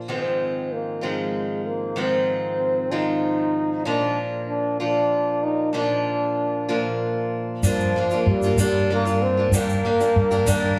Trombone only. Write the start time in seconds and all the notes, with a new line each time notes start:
0.11 C4
0.73 A#3
1.05 G#3
1.67 A#3
2.00 C4
2.92 D#4
3.85 D4
4.48 D4
4.81 D4
5.43 D#4
5.75 D4
7.66 F3
8.29 G3
8.61 G3
8.93 A#3
9.22 C4
9.55 A#3